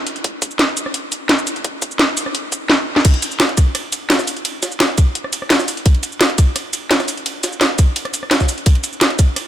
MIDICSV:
0, 0, Header, 1, 2, 480
1, 0, Start_track
1, 0, Tempo, 350877
1, 331, Time_signature, 4, 2, 24, 8
1, 12965, End_track
2, 0, Start_track
2, 0, Title_t, "Drums"
2, 90, Note_on_c, 9, 42, 61
2, 217, Note_off_c, 9, 42, 0
2, 217, Note_on_c, 9, 42, 36
2, 333, Note_off_c, 9, 42, 0
2, 333, Note_on_c, 9, 42, 90
2, 334, Note_on_c, 9, 36, 119
2, 469, Note_off_c, 9, 42, 0
2, 471, Note_off_c, 9, 36, 0
2, 574, Note_on_c, 9, 36, 113
2, 574, Note_on_c, 9, 42, 61
2, 574, Note_on_c, 9, 69, 54
2, 697, Note_off_c, 9, 69, 0
2, 697, Note_on_c, 9, 69, 27
2, 711, Note_off_c, 9, 36, 0
2, 711, Note_off_c, 9, 42, 0
2, 811, Note_on_c, 9, 38, 121
2, 811, Note_on_c, 9, 42, 89
2, 834, Note_off_c, 9, 69, 0
2, 948, Note_off_c, 9, 38, 0
2, 948, Note_off_c, 9, 42, 0
2, 1052, Note_on_c, 9, 42, 64
2, 1052, Note_on_c, 9, 69, 57
2, 1177, Note_on_c, 9, 37, 49
2, 1188, Note_off_c, 9, 42, 0
2, 1188, Note_off_c, 9, 69, 0
2, 1288, Note_on_c, 9, 42, 93
2, 1314, Note_off_c, 9, 37, 0
2, 1424, Note_off_c, 9, 42, 0
2, 1530, Note_on_c, 9, 42, 67
2, 1530, Note_on_c, 9, 69, 56
2, 1667, Note_off_c, 9, 42, 0
2, 1667, Note_off_c, 9, 69, 0
2, 1768, Note_on_c, 9, 38, 125
2, 1768, Note_on_c, 9, 42, 90
2, 1895, Note_on_c, 9, 69, 28
2, 1905, Note_off_c, 9, 38, 0
2, 1905, Note_off_c, 9, 42, 0
2, 2009, Note_off_c, 9, 69, 0
2, 2009, Note_on_c, 9, 42, 62
2, 2009, Note_on_c, 9, 69, 52
2, 2135, Note_off_c, 9, 42, 0
2, 2135, Note_on_c, 9, 42, 36
2, 2146, Note_off_c, 9, 69, 0
2, 2250, Note_off_c, 9, 42, 0
2, 2250, Note_on_c, 9, 42, 91
2, 2252, Note_on_c, 9, 36, 127
2, 2386, Note_off_c, 9, 42, 0
2, 2389, Note_off_c, 9, 36, 0
2, 2490, Note_on_c, 9, 42, 57
2, 2490, Note_on_c, 9, 69, 57
2, 2492, Note_on_c, 9, 36, 109
2, 2617, Note_off_c, 9, 69, 0
2, 2617, Note_on_c, 9, 69, 26
2, 2626, Note_off_c, 9, 42, 0
2, 2628, Note_off_c, 9, 36, 0
2, 2728, Note_on_c, 9, 38, 127
2, 2728, Note_on_c, 9, 42, 84
2, 2753, Note_off_c, 9, 69, 0
2, 2865, Note_off_c, 9, 38, 0
2, 2865, Note_off_c, 9, 42, 0
2, 2969, Note_on_c, 9, 46, 84
2, 2969, Note_on_c, 9, 69, 61
2, 3094, Note_on_c, 9, 37, 47
2, 3106, Note_off_c, 9, 46, 0
2, 3106, Note_off_c, 9, 69, 0
2, 3210, Note_on_c, 9, 42, 90
2, 3231, Note_off_c, 9, 37, 0
2, 3346, Note_off_c, 9, 42, 0
2, 3449, Note_on_c, 9, 42, 63
2, 3449, Note_on_c, 9, 69, 58
2, 3451, Note_on_c, 9, 36, 68
2, 3586, Note_off_c, 9, 42, 0
2, 3586, Note_off_c, 9, 69, 0
2, 3588, Note_off_c, 9, 36, 0
2, 3688, Note_on_c, 9, 38, 116
2, 3825, Note_off_c, 9, 38, 0
2, 4053, Note_on_c, 9, 38, 78
2, 4168, Note_on_c, 9, 42, 101
2, 4168, Note_on_c, 9, 49, 108
2, 4169, Note_on_c, 9, 51, 91
2, 4173, Note_on_c, 9, 36, 120
2, 4190, Note_off_c, 9, 38, 0
2, 4294, Note_off_c, 9, 51, 0
2, 4294, Note_on_c, 9, 51, 47
2, 4305, Note_off_c, 9, 42, 0
2, 4305, Note_off_c, 9, 49, 0
2, 4309, Note_off_c, 9, 36, 0
2, 4409, Note_off_c, 9, 51, 0
2, 4409, Note_on_c, 9, 51, 67
2, 4411, Note_on_c, 9, 42, 67
2, 4411, Note_on_c, 9, 69, 57
2, 4534, Note_off_c, 9, 69, 0
2, 4534, Note_on_c, 9, 69, 27
2, 4546, Note_off_c, 9, 51, 0
2, 4548, Note_off_c, 9, 42, 0
2, 4648, Note_on_c, 9, 38, 116
2, 4648, Note_on_c, 9, 51, 88
2, 4649, Note_off_c, 9, 38, 0
2, 4649, Note_on_c, 9, 38, 115
2, 4649, Note_on_c, 9, 42, 96
2, 4670, Note_off_c, 9, 69, 0
2, 4776, Note_off_c, 9, 51, 0
2, 4776, Note_on_c, 9, 51, 43
2, 4785, Note_off_c, 9, 38, 0
2, 4785, Note_off_c, 9, 42, 0
2, 4889, Note_off_c, 9, 51, 0
2, 4889, Note_on_c, 9, 37, 33
2, 4889, Note_on_c, 9, 42, 68
2, 4889, Note_on_c, 9, 51, 72
2, 4889, Note_on_c, 9, 69, 63
2, 4892, Note_on_c, 9, 36, 102
2, 5025, Note_off_c, 9, 37, 0
2, 5025, Note_off_c, 9, 42, 0
2, 5025, Note_off_c, 9, 69, 0
2, 5026, Note_off_c, 9, 51, 0
2, 5029, Note_off_c, 9, 36, 0
2, 5127, Note_on_c, 9, 37, 38
2, 5127, Note_on_c, 9, 42, 100
2, 5129, Note_on_c, 9, 51, 91
2, 5264, Note_off_c, 9, 37, 0
2, 5264, Note_off_c, 9, 42, 0
2, 5266, Note_off_c, 9, 51, 0
2, 5368, Note_on_c, 9, 42, 70
2, 5368, Note_on_c, 9, 51, 70
2, 5368, Note_on_c, 9, 69, 60
2, 5505, Note_off_c, 9, 42, 0
2, 5505, Note_off_c, 9, 51, 0
2, 5505, Note_off_c, 9, 69, 0
2, 5607, Note_on_c, 9, 38, 122
2, 5607, Note_on_c, 9, 42, 99
2, 5610, Note_off_c, 9, 38, 0
2, 5610, Note_on_c, 9, 38, 118
2, 5610, Note_on_c, 9, 51, 89
2, 5733, Note_on_c, 9, 37, 40
2, 5733, Note_on_c, 9, 69, 30
2, 5736, Note_off_c, 9, 38, 0
2, 5736, Note_on_c, 9, 38, 46
2, 5744, Note_off_c, 9, 42, 0
2, 5747, Note_off_c, 9, 51, 0
2, 5847, Note_off_c, 9, 69, 0
2, 5847, Note_on_c, 9, 46, 70
2, 5847, Note_on_c, 9, 69, 57
2, 5851, Note_on_c, 9, 51, 71
2, 5870, Note_off_c, 9, 37, 0
2, 5873, Note_off_c, 9, 38, 0
2, 5972, Note_on_c, 9, 42, 38
2, 5984, Note_off_c, 9, 46, 0
2, 5984, Note_off_c, 9, 69, 0
2, 5987, Note_off_c, 9, 51, 0
2, 6086, Note_off_c, 9, 42, 0
2, 6086, Note_on_c, 9, 42, 98
2, 6090, Note_on_c, 9, 51, 88
2, 6223, Note_off_c, 9, 42, 0
2, 6226, Note_off_c, 9, 51, 0
2, 6327, Note_on_c, 9, 42, 65
2, 6327, Note_on_c, 9, 69, 54
2, 6329, Note_on_c, 9, 38, 43
2, 6329, Note_on_c, 9, 51, 69
2, 6453, Note_off_c, 9, 69, 0
2, 6453, Note_on_c, 9, 69, 27
2, 6464, Note_off_c, 9, 42, 0
2, 6466, Note_off_c, 9, 38, 0
2, 6466, Note_off_c, 9, 51, 0
2, 6568, Note_on_c, 9, 38, 121
2, 6568, Note_on_c, 9, 51, 90
2, 6569, Note_off_c, 9, 38, 0
2, 6569, Note_on_c, 9, 38, 117
2, 6569, Note_on_c, 9, 42, 92
2, 6590, Note_off_c, 9, 69, 0
2, 6705, Note_off_c, 9, 51, 0
2, 6706, Note_off_c, 9, 38, 0
2, 6706, Note_off_c, 9, 42, 0
2, 6806, Note_on_c, 9, 51, 75
2, 6809, Note_on_c, 9, 42, 66
2, 6809, Note_on_c, 9, 69, 59
2, 6812, Note_on_c, 9, 36, 110
2, 6943, Note_off_c, 9, 51, 0
2, 6946, Note_off_c, 9, 42, 0
2, 6946, Note_off_c, 9, 69, 0
2, 6949, Note_off_c, 9, 36, 0
2, 7048, Note_on_c, 9, 42, 94
2, 7174, Note_on_c, 9, 37, 48
2, 7185, Note_off_c, 9, 42, 0
2, 7286, Note_on_c, 9, 51, 73
2, 7288, Note_on_c, 9, 42, 67
2, 7288, Note_on_c, 9, 69, 59
2, 7310, Note_off_c, 9, 37, 0
2, 7416, Note_on_c, 9, 37, 42
2, 7422, Note_off_c, 9, 51, 0
2, 7425, Note_off_c, 9, 42, 0
2, 7425, Note_off_c, 9, 69, 0
2, 7526, Note_on_c, 9, 38, 117
2, 7526, Note_on_c, 9, 51, 90
2, 7531, Note_off_c, 9, 38, 0
2, 7531, Note_on_c, 9, 38, 127
2, 7531, Note_on_c, 9, 42, 100
2, 7553, Note_off_c, 9, 37, 0
2, 7654, Note_off_c, 9, 38, 0
2, 7654, Note_on_c, 9, 38, 52
2, 7657, Note_on_c, 9, 69, 28
2, 7663, Note_off_c, 9, 51, 0
2, 7668, Note_off_c, 9, 42, 0
2, 7770, Note_off_c, 9, 69, 0
2, 7770, Note_on_c, 9, 46, 77
2, 7770, Note_on_c, 9, 51, 68
2, 7770, Note_on_c, 9, 69, 54
2, 7791, Note_off_c, 9, 38, 0
2, 7897, Note_on_c, 9, 42, 35
2, 7906, Note_off_c, 9, 51, 0
2, 7907, Note_off_c, 9, 46, 0
2, 7907, Note_off_c, 9, 69, 0
2, 8010, Note_on_c, 9, 51, 88
2, 8012, Note_off_c, 9, 42, 0
2, 8012, Note_on_c, 9, 42, 89
2, 8013, Note_on_c, 9, 36, 127
2, 8134, Note_off_c, 9, 51, 0
2, 8134, Note_on_c, 9, 51, 46
2, 8149, Note_off_c, 9, 42, 0
2, 8150, Note_off_c, 9, 36, 0
2, 8248, Note_off_c, 9, 51, 0
2, 8248, Note_on_c, 9, 51, 67
2, 8251, Note_on_c, 9, 42, 63
2, 8251, Note_on_c, 9, 69, 57
2, 8376, Note_off_c, 9, 69, 0
2, 8376, Note_on_c, 9, 69, 27
2, 8385, Note_off_c, 9, 51, 0
2, 8388, Note_off_c, 9, 42, 0
2, 8491, Note_on_c, 9, 38, 121
2, 8491, Note_on_c, 9, 42, 90
2, 8491, Note_on_c, 9, 51, 86
2, 8512, Note_off_c, 9, 69, 0
2, 8615, Note_off_c, 9, 51, 0
2, 8615, Note_on_c, 9, 51, 47
2, 8628, Note_off_c, 9, 38, 0
2, 8628, Note_off_c, 9, 42, 0
2, 8729, Note_on_c, 9, 37, 36
2, 8729, Note_on_c, 9, 42, 66
2, 8729, Note_on_c, 9, 69, 57
2, 8730, Note_off_c, 9, 51, 0
2, 8730, Note_on_c, 9, 51, 73
2, 8733, Note_on_c, 9, 36, 113
2, 8866, Note_off_c, 9, 37, 0
2, 8866, Note_off_c, 9, 42, 0
2, 8866, Note_off_c, 9, 69, 0
2, 8867, Note_off_c, 9, 51, 0
2, 8870, Note_off_c, 9, 36, 0
2, 8970, Note_on_c, 9, 37, 37
2, 8970, Note_on_c, 9, 42, 94
2, 8970, Note_on_c, 9, 51, 87
2, 9107, Note_off_c, 9, 37, 0
2, 9107, Note_off_c, 9, 42, 0
2, 9107, Note_off_c, 9, 51, 0
2, 9209, Note_on_c, 9, 42, 65
2, 9209, Note_on_c, 9, 69, 55
2, 9210, Note_on_c, 9, 51, 74
2, 9346, Note_off_c, 9, 42, 0
2, 9346, Note_off_c, 9, 69, 0
2, 9347, Note_off_c, 9, 51, 0
2, 9449, Note_on_c, 9, 38, 120
2, 9449, Note_on_c, 9, 42, 92
2, 9449, Note_on_c, 9, 51, 88
2, 9574, Note_on_c, 9, 37, 40
2, 9574, Note_on_c, 9, 69, 28
2, 9577, Note_off_c, 9, 38, 0
2, 9577, Note_on_c, 9, 38, 45
2, 9585, Note_off_c, 9, 42, 0
2, 9586, Note_off_c, 9, 51, 0
2, 9687, Note_off_c, 9, 69, 0
2, 9687, Note_on_c, 9, 46, 80
2, 9687, Note_on_c, 9, 69, 56
2, 9690, Note_on_c, 9, 51, 70
2, 9711, Note_off_c, 9, 37, 0
2, 9714, Note_off_c, 9, 38, 0
2, 9815, Note_on_c, 9, 42, 36
2, 9824, Note_off_c, 9, 46, 0
2, 9824, Note_off_c, 9, 69, 0
2, 9827, Note_off_c, 9, 51, 0
2, 9930, Note_off_c, 9, 42, 0
2, 9930, Note_on_c, 9, 42, 90
2, 9933, Note_on_c, 9, 51, 91
2, 10067, Note_off_c, 9, 42, 0
2, 10069, Note_off_c, 9, 51, 0
2, 10169, Note_on_c, 9, 42, 60
2, 10169, Note_on_c, 9, 69, 57
2, 10174, Note_on_c, 9, 38, 42
2, 10174, Note_on_c, 9, 51, 67
2, 10295, Note_off_c, 9, 69, 0
2, 10295, Note_on_c, 9, 69, 27
2, 10306, Note_off_c, 9, 42, 0
2, 10311, Note_off_c, 9, 38, 0
2, 10311, Note_off_c, 9, 51, 0
2, 10409, Note_on_c, 9, 38, 124
2, 10409, Note_on_c, 9, 42, 86
2, 10410, Note_off_c, 9, 38, 0
2, 10410, Note_on_c, 9, 38, 117
2, 10410, Note_on_c, 9, 51, 89
2, 10432, Note_off_c, 9, 69, 0
2, 10546, Note_off_c, 9, 42, 0
2, 10547, Note_off_c, 9, 38, 0
2, 10547, Note_off_c, 9, 51, 0
2, 10648, Note_on_c, 9, 42, 64
2, 10648, Note_on_c, 9, 69, 58
2, 10651, Note_on_c, 9, 51, 73
2, 10653, Note_on_c, 9, 36, 110
2, 10785, Note_off_c, 9, 42, 0
2, 10785, Note_off_c, 9, 69, 0
2, 10788, Note_off_c, 9, 51, 0
2, 10790, Note_off_c, 9, 36, 0
2, 10889, Note_on_c, 9, 42, 92
2, 10892, Note_on_c, 9, 51, 87
2, 11015, Note_on_c, 9, 37, 47
2, 11017, Note_off_c, 9, 51, 0
2, 11017, Note_on_c, 9, 51, 45
2, 11026, Note_off_c, 9, 42, 0
2, 11130, Note_on_c, 9, 42, 63
2, 11130, Note_on_c, 9, 69, 57
2, 11132, Note_off_c, 9, 51, 0
2, 11132, Note_on_c, 9, 51, 73
2, 11152, Note_off_c, 9, 37, 0
2, 11256, Note_on_c, 9, 37, 38
2, 11267, Note_off_c, 9, 42, 0
2, 11267, Note_off_c, 9, 69, 0
2, 11269, Note_off_c, 9, 51, 0
2, 11368, Note_on_c, 9, 38, 127
2, 11368, Note_on_c, 9, 42, 91
2, 11369, Note_off_c, 9, 38, 0
2, 11369, Note_on_c, 9, 38, 124
2, 11369, Note_on_c, 9, 51, 86
2, 11393, Note_off_c, 9, 37, 0
2, 11494, Note_on_c, 9, 69, 28
2, 11496, Note_off_c, 9, 38, 0
2, 11496, Note_on_c, 9, 38, 51
2, 11497, Note_on_c, 9, 36, 61
2, 11505, Note_off_c, 9, 42, 0
2, 11506, Note_off_c, 9, 51, 0
2, 11607, Note_off_c, 9, 69, 0
2, 11607, Note_on_c, 9, 46, 80
2, 11607, Note_on_c, 9, 69, 56
2, 11611, Note_on_c, 9, 51, 68
2, 11633, Note_off_c, 9, 38, 0
2, 11634, Note_off_c, 9, 36, 0
2, 11734, Note_on_c, 9, 42, 35
2, 11744, Note_off_c, 9, 46, 0
2, 11744, Note_off_c, 9, 69, 0
2, 11748, Note_off_c, 9, 51, 0
2, 11847, Note_off_c, 9, 42, 0
2, 11847, Note_on_c, 9, 42, 93
2, 11851, Note_on_c, 9, 36, 122
2, 11852, Note_on_c, 9, 51, 90
2, 11975, Note_off_c, 9, 51, 0
2, 11975, Note_on_c, 9, 51, 49
2, 11984, Note_off_c, 9, 42, 0
2, 11988, Note_off_c, 9, 36, 0
2, 12088, Note_off_c, 9, 51, 0
2, 12088, Note_on_c, 9, 42, 58
2, 12088, Note_on_c, 9, 51, 64
2, 12088, Note_on_c, 9, 69, 60
2, 12214, Note_off_c, 9, 69, 0
2, 12214, Note_on_c, 9, 69, 28
2, 12225, Note_off_c, 9, 42, 0
2, 12225, Note_off_c, 9, 51, 0
2, 12328, Note_on_c, 9, 38, 116
2, 12328, Note_on_c, 9, 51, 87
2, 12329, Note_off_c, 9, 38, 0
2, 12329, Note_on_c, 9, 38, 118
2, 12329, Note_on_c, 9, 42, 89
2, 12351, Note_off_c, 9, 69, 0
2, 12454, Note_off_c, 9, 51, 0
2, 12454, Note_on_c, 9, 51, 46
2, 12465, Note_off_c, 9, 38, 0
2, 12465, Note_off_c, 9, 42, 0
2, 12568, Note_on_c, 9, 37, 33
2, 12568, Note_on_c, 9, 42, 67
2, 12568, Note_on_c, 9, 69, 61
2, 12571, Note_off_c, 9, 51, 0
2, 12571, Note_on_c, 9, 36, 106
2, 12571, Note_on_c, 9, 51, 74
2, 12705, Note_off_c, 9, 37, 0
2, 12705, Note_off_c, 9, 42, 0
2, 12705, Note_off_c, 9, 69, 0
2, 12708, Note_off_c, 9, 36, 0
2, 12708, Note_off_c, 9, 51, 0
2, 12809, Note_on_c, 9, 37, 35
2, 12809, Note_on_c, 9, 42, 88
2, 12812, Note_on_c, 9, 51, 90
2, 12946, Note_off_c, 9, 37, 0
2, 12946, Note_off_c, 9, 42, 0
2, 12948, Note_off_c, 9, 51, 0
2, 12965, End_track
0, 0, End_of_file